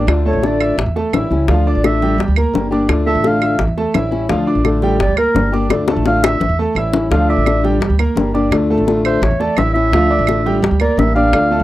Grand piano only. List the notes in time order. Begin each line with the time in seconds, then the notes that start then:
Already playing: D4 D5 D6
0.25 A3 A4 A5
0.61 E5 E6
0.96 A3 A4 A5
1.13 E4 E5 E6
1.49 F3 F4 F5
1.67 D4 D5 D6
2.02 G3 G4 G5
2.37 A#3 A#4 A#5
2.72 D4 D5 D6
3.06 A3 A4 A5
3.43 E5 E6
3.77 A3 A4 A5
3.94 E4 E5 E6
4.29 F3 F4 F5
4.47 D4 D5 D6
4.83 G3 G4 G5
5.18 A#3 A#4 A#5
5.53 D4 D5 D6
5.88 A3 A4 A5
6.24 E5 E6
6.59 A3 A4 A5
6.77 E4 E5 E6
7.12 F3 F4 F5
7.29 D4 D5 D6
7.64 G3 G4 G5
7.99 A#3 A#4 A#5
8.34 D4 D5 D6
8.70 A3 A4 A5
9.06 E5 E6
9.40 A3 A4 A5
9.58 E4 E5 E6
9.93 F3 F4 F5
10.10 D4 D5 D6
10.46 G3 G4 G5
10.81 A#3 A#4 A#5
11.16 D4 D5 D6
11.51 A3 A4 A5